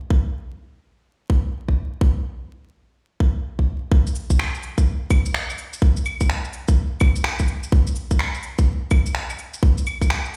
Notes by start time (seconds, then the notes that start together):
0.10 kick
1.30 kick
1.68 kick
2.01 kick
3.20 kick
3.59 kick
3.92 kick
4.07 shaker
4.16 cabasa
4.30 kick, shaker
4.39 finger snap
4.55 shaker
4.63 cabasa
4.78 kick, shaker
5.10 kick, cabasa, claves
5.26 shaker
5.34 finger snap
5.50 claves, shaker
5.58 cabasa
5.73 shaker
5.82 kick
5.97 shaker
6.06 cabasa, claves
6.21 kick, claves, shaker
6.30 finger snap
6.45 shaker
6.53 cabasa
6.68 kick, shaker
7.00 kick, cabasa, claves
7.16 shaker
7.24 finger snap
7.39 kick, shaker
7.48 cabasa
7.63 shaker
7.72 kick
7.87 shaker
7.96 cabasa
8.11 kick, shaker
8.19 finger snap
8.35 shaker
8.43 cabasa
8.58 kick, shaker
8.91 kick, cabasa, claves
9.06 shaker
9.15 finger snap
9.30 claves, shaker
9.39 cabasa
9.54 shaker
9.63 kick
9.78 shaker
9.87 cabasa, claves
10.01 kick, claves, shaker
10.10 finger snap
10.25 shaker